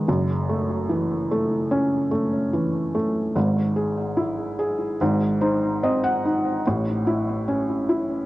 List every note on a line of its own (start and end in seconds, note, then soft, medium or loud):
0.08 3.33 F#1 medium
0.08 3.33 F#2 medium
0.49 1.30 A3 medium
0.89 2.50 E3 medium
1.31 2.10 A3 medium
1.71 3.32 C#4 medium
2.11 2.93 A3 medium
2.53 3.33 E3 medium
2.95 3.35 A3 medium
3.35 4.96 G#1 medium
3.35 4.96 G#2 medium
3.76 4.57 G#4 soft
4.17 4.97 E4 soft
4.59 4.99 G#4 medium
5.01 6.61 G#1 medium
5.01 6.61 G#2 medium
5.41 6.24 D#4 soft
5.41 5.80 C5 medium
5.83 6.63 C4 medium
5.83 6.02 D#5 medium
6.04 6.61 F#5 medium
6.25 6.64 D#4 soft
6.67 8.26 A1 medium
6.67 8.26 A2 medium
7.07 7.88 E4 medium
7.48 8.26 C#4 medium
7.89 8.26 E4 medium